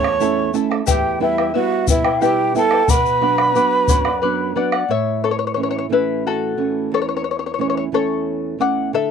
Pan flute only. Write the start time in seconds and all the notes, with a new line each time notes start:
Already playing: C#5
0.88 G4
1.22 E4
1.56 F#4
1.90 E4
2.24 G4
2.57 A4
2.91 B4